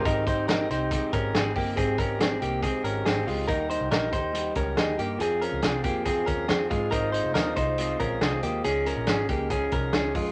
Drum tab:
HH |xxxxxxxo|xxxxxxxo|xxxxxxxx|xxxxxxxx|
SD |--o---o-|--o---o-|--o---o-|--o---o-|
BD |oo--oo-o|oo--o---|o--o-o--|---ooo-o|

HH |xxxxxxxx|xxxxxxxo|
SD |--o---o-|--o---o-|
BD |o--o-o--|---ooo-o|